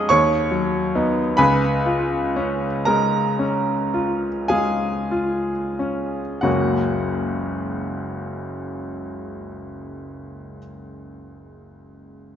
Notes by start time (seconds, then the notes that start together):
Already playing: G#3 C#4 G#4 D#5 F5 C#6 D#6 F6
0.09 D#2 C#5 C#6
0.51 F#3
0.95 B3 D#4
1.37 C#2 B4 G#5 B5
1.86 F4
2.36 C#4
2.85 G#3 A#4 A#5
3.39 C#4
3.94 F4
4.48 G#3 G#4 F5 G#5
5.11 F4
5.79 C#4
6.41 F#1 C#2 F#3 A#3 C#4 F#4 F#5